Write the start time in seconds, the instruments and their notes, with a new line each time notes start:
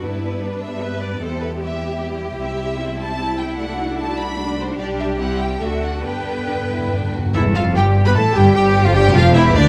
Already playing: violin section D4
0.03 timpani G2, double bass section G2, viola section G3 B3, cello section E4, violin section B4
0.42 cello section D4
0.63 violin section E5
0.81 cello section B4
1.01 violin section D5
1.20 double bass section E2, violin section E4 G4 C5, cello section A4
1.42 violin section B4
1.60 cello section G4, violin section E5
2.39 double bass section C2, viola section G3 C4, violin section E5
2.79 cello section E4
3.00 violin section A5
3.39 violin section G5
3.57 viola section A3 D4, violin section D4 F#4 F#5
3.99 violin section A5
4.18 violin section B5
4.40 cello section D4
4.60 violin section C5
4.79 double bass section B1, viola section G3 D4, violin section D4 G4 D5, cello section G4
4.99 violin section E5
5.19 double bass section C2, viola section G3 C4, violin section E4 G4 F#5
5.40 violin section G5
5.61 double bass section D2, viola section D3 A3, violin section D4 A4 E5, cello section F#4
5.83 violin section F#5
6.04 double bass section G2, timpani G2, viola section D3 B3, violin section D4 G4 G5, cello section B4
6.13 timpani G2
6.22 timpani G2
6.30 timpani G2
6.38 timpani G2
6.47 timpani G2, violin section D4
6.55 timpani G2
6.63 timpani G2
6.70 timpani G2, violin section E4
6.78 timpani G2
6.86 timpani G2
6.92 timpani G2, violin section D4
7.02 timpani G2
7.10 timpani G2
7.15 violin section F#4
7.19 timpani G2
7.26 timpani G2
7.34 double bass section E1, cello section E2, timpani C3, french horn section E3, violin section E4 E5, viola section E4, clarinet E4, oboe A4, flute E5
7.54 double bass section F1, cello section F2, french horn section F3, clarinet F4, violin section F4 F5, viola section F4, flute F5
7.75 double bass section G1, cello section G2, french horn section G3, oboe G4, violin section G4 G5, viola section G4, clarinet G4, flute G5
8.05 cello section B2, french horn section B3, violin section B4 B5, viola section B4, clarinet B4, flute B5
8.15 double bass section A1, cello section A2, french horn section A3, oboe E4, viola section A4, violin section A4 A5, clarinet A4, flute A5
8.34 double bass section G1, cello section G2, french horn section G3, violin section G4 G5, viola section G4, clarinet G4, flute G5
8.55 double bass section G1, cello section G2, french horn section G3, violin section G4 G5, oboe G4, viola section G4, clarinet G4, flute G5
8.84 cello section F2, french horn section F3, violin section F4 F5, viola section F4, clarinet F4, flute F5
8.94 double bass section G1, cello section G2, french horn section G3, violin section G4 G5, viola section G4, clarinet G4, flute G5
9.13 double bass section F1, cello section F2, french horn section F3, violin section F4 F5, viola section F4, clarinet F4, flute F5
9.33 double bass section E1, cello section E2, french horn section E3, violin section E4 E5, viola section E4, clarinet E4, oboe G4, flute E5
9.54 cello section D2, double bass section D2, french horn section D3, viola section D4, clarinet D4, violin section D4 D5, flute D5